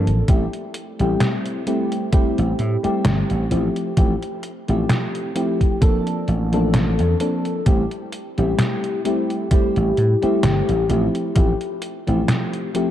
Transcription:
Already playing: fm electric piano F3 A#3 C4 D4 A4
0.07 slap bass A1, closed hi-hat
0.28 slap bass A1, fm electric piano G3 A3 C4 E4 G4, kick, closed hi-hat
0.53 closed hi-hat
0.74 closed hi-hat
0.99 slap bass A1, fm electric piano G3 A3 C4 E4 G4, closed hi-hat
1.20 snare, closed hi-hat
1.46 closed hi-hat
1.66 fm electric piano G3 A3 C4 E4 G4, closed hi-hat
1.92 closed hi-hat
2.12 fm electric piano G3 A3 C4 E4 G4, muted slap bass stroke, kick, closed hi-hat
2.38 slap bass A1, closed hi-hat
2.59 slap bass A2, closed hi-hat
2.83 fm electric piano G3 A3 C4 E4 G4, muted slap bass stroke, closed hi-hat
3.05 slap bass G1, snare, closed hi-hat
3.30 slap bass A1, closed hi-hat
3.50 slap bass A1, fm electric piano F3 A3 C4 E4 G4, closed hi-hat
3.76 closed hi-hat
3.97 slap bass A1, fm electric piano F3 A3 C4 E4 G4, kick, closed hi-hat
4.23 closed hi-hat
4.43 closed hi-hat
4.68 slap bass A1, fm electric piano F3 A3 C4 E4 G4, closed hi-hat
4.90 snare, closed hi-hat
5.15 closed hi-hat
5.35 fm electric piano F3 A3 C4 E4 G4, closed hi-hat
5.61 kick, closed hi-hat
5.81 fm electric piano F3 A#3 C4 D4 A4, kick, closed hi-hat
6.07 closed hi-hat
6.28 slap bass A1, closed hi-hat
6.52 fm electric piano F3 A#3 C4 D4 A4, closed hi-hat
6.74 snare, closed hi-hat
6.99 slap bass E2, closed hi-hat
7.20 fm electric piano F3 A#3 C4 D4 A4, closed hi-hat
7.45 closed hi-hat
7.66 slap bass A1, fm electric piano G3 A3 C4 E4 G4, kick, closed hi-hat
7.91 closed hi-hat
8.13 closed hi-hat
8.38 slap bass A1, fm electric piano G3 A3 C4 E4 G4, closed hi-hat
8.59 snare, closed hi-hat
8.84 closed hi-hat
9.04 fm electric piano G3 A3 C4 E4 G4, closed hi-hat
9.30 closed hi-hat
9.51 fm electric piano G3 A3 C4 E4 G4, muted slap bass stroke, kick, closed hi-hat
9.76 slap bass A1, closed hi-hat
9.97 slap bass A2, closed hi-hat
10.22 fm electric piano G3 A3 C4 E4 G4, muted slap bass stroke, closed hi-hat
10.43 slap bass G1, snare, closed hi-hat
10.69 slap bass A1, closed hi-hat
10.89 slap bass A1, fm electric piano F3 A3 C4 E4 G4, closed hi-hat
11.15 closed hi-hat
11.35 slap bass A1, fm electric piano F3 A3 C4 E4 G4, kick, closed hi-hat
11.61 closed hi-hat
11.82 closed hi-hat
12.07 slap bass A1, fm electric piano F3 A3 C4 E4 G4, closed hi-hat
12.28 snare, closed hi-hat
12.53 closed hi-hat
12.74 fm electric piano F3 A3 C4 E4 G4, closed hi-hat

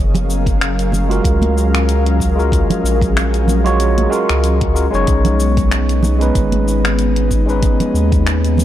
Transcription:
Already playing: analog synth bass F#1, analog synth pad G#4 A#4 F5
0.00 analog synth pad F#3 C#4
0.14 closed hi-hat, low conga, cabasa
0.30 cabasa
0.46 kick, closed hi-hat, cabasa
0.61 finger snap, closed hi-hat, cabasa
0.79 closed hi-hat, cabasa
0.92 high conga, low conga, cabasa
1.08 tine electric piano G#3 F4 F#4 A#4, closed hi-hat, cabasa
1.24 analog synth bass C#2, kick, closed hi-hat, cabasa
1.42 closed hi-hat, high conga
1.58 cabasa
1.75 finger snap, closed hi-hat, cabasa
1.89 closed hi-hat, cabasa
2.06 closed hi-hat
2.20 kick, cabasa
2.36 tine electric piano G#3 F4 F#4 A#4, cabasa
2.52 kick, closed hi-hat, cabasa
2.70 closed hi-hat, low conga, cabasa
2.84 analog synth bass A#1, cabasa
3.01 kick, closed hi-hat, cabasa
3.17 finger snap, closed hi-hat, cabasa
3.34 closed hi-hat, cabasa
3.48 high conga, low conga, cabasa
3.64 tine electric piano G#3 F4 F#4 C#5, closed hi-hat, cabasa
3.80 closed hi-hat, cabasa
3.98 closed hi-hat, high conga
4.10 tine electric piano G#3 F4 F#4 A#4, cabasa
4.29 analog synth bass C#2, finger snap, closed hi-hat, cabasa
4.44 closed hi-hat, cabasa
4.61 kick, closed hi-hat
4.74 tine electric piano G#3 F4 F#4 A#4, cabasa
4.91 analog synth bass F#1, tine electric piano G#3 C#4 D#4, cabasa
4.95 tine electric piano C#5
5.07 analog synth bass B1, analog synth pad G#3 B3 D#4, kick, closed hi-hat, cabasa
5.25 closed hi-hat, low conga, cabasa
5.40 cabasa
5.57 kick, closed hi-hat, cabasa
5.71 finger snap, closed hi-hat, cabasa
5.89 closed hi-hat, cabasa
6.03 high conga, low conga, cabasa
6.19 tine electric piano G#3 C#4 D#4 B4, closed hi-hat, cabasa
6.35 analog synth bass G#1, kick, closed hi-hat, cabasa
6.52 closed hi-hat, high conga
6.68 cabasa
6.85 finger snap, closed hi-hat, cabasa
6.99 closed hi-hat, cabasa
7.16 closed hi-hat
7.31 kick, cabasa
7.46 tine electric piano G#3 C#4 D#4 B4, cabasa
7.63 kick, closed hi-hat, cabasa
7.80 closed hi-hat, low conga, cabasa
7.94 analog synth bass D#2, cabasa
8.12 kick, closed hi-hat, cabasa
8.27 finger snap, closed hi-hat, cabasa
8.45 closed hi-hat, cabasa
8.57 high conga, low conga, cabasa

